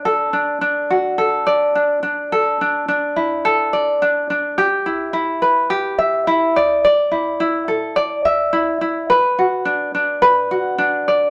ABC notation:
X:1
M:4/4
L:1/8
Q:"Swing 16ths" 1/4=106
K:Amix
V:1 name="Ukulele"
A D D F A d D D | A D D E A d D D | G E E B G e E d | d E E A d e E E |
B F D D B F D d |]